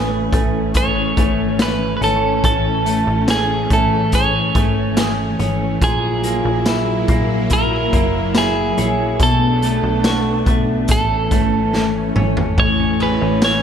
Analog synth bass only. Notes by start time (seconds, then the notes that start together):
Already playing: A1
0.33 A1
1.17 G#1
2.02 G#1
2.44 A1
3.07 A1
3.71 A1
4.55 G#1
5.39 G#1
5.81 A#1
6.45 A#1
7.08 A#1
7.93 F#1
8.78 A#1
9.20 B1
9.83 B1
10.46 B1
10.89 A1
11.31 G#1
12.16 G#1
12.58 A1
13.22 A1